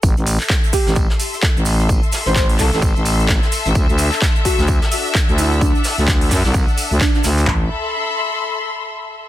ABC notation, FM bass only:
X:1
M:4/4
L:1/16
Q:"Swing 16ths" 1/4=129
K:Am
V:1 name="FM bass" clef=bass
A,,, A,,,2 z4 A,,,2 z4 A,,,3- | A,,, z2 A,,,3 C,, A,,,2 A,,,4 z2 A,,, | D,, D,,2 z4 D,,2 z4 D,,3- | D,, z2 D,,3 ^F,, C,,2 z2 D,, z2 D,,2 |
A,,,2 z12 z2 |]